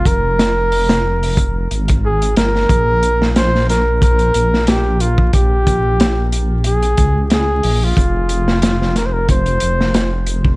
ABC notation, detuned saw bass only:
X:1
M:4/4
L:1/16
Q:"Swing 16ths" 1/4=91
K:Fm
V:1 name="Detuned saw bass" clef=bass
F,,,8- F,,,2 A,,,3 A,,, G,,,2 | B,,,8- B,,,2 B,,,6 | B,,,8- B,,,2 D,,4 B,,,2 | F,,,8- F,,,2 F,,,6 |]